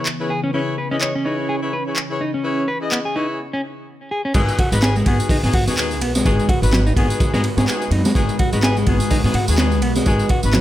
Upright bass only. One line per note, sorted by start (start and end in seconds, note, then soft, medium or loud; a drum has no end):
4.35 4.45 G#1 medium
4.72 5.02 G#1 loud
5.06 5.16 G#1 medium
5.29 muted upright bass stroke soft
5.43 5.51 G#2 medium
5.54 5.64 G#2 medium
5.67 6.01 D#2 medium
6.01 6.20 B1 loud
6.26 6.35 G#1 loud
6.62 6.92 G#1 loud
6.96 7.07 G#1 medium
7.34 7.41 G#2 medium
7.57 7.65 G#2 medium
7.91 8.01 F#2 loud
8.15 8.26 G#1 loud
8.53 8.83 G#1 loud
8.87 8.97 G#1 loud
9.24 9.32 G#2 medium
9.34 9.45 G#2 medium
9.48 9.82 D#2 medium
9.82 10.01 B1 loud
10.06 10.16 G#1 loud
10.44 10.61 G#1 loud